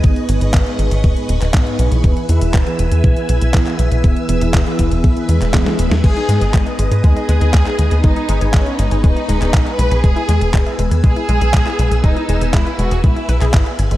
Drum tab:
CC |----------------|----------------|----------------|x---------------|
HH |xxxxxxxxxxxxxxxx|xxxxxxxxxxxxxxxx|xxxxxxxxxxxxxxxx|xxxxxxxxxxxxxxxx|
CP |----x------xx---|----x-------xx--|----x------xx---|----x-------xx--|
SD |----------------|----------------|------------oo-o|----------------|
BD |o---o---o---o---|o---o---o---o---|o---o-o-o---o---|o---o---o---o---|

CC |----------------|----------------|----------------|
HH |xxxxxxxxxxxxxxxx|xxxxxxxxxxxxxxxx|xxxxxxxxxxxxxxxx|
CP |----x------xx---|----x-------xx--|----x------xx---|
SD |----------------|----------------|----------------|
BD |o---o---o---o---|o---o---o---o---|o---o---o---o---|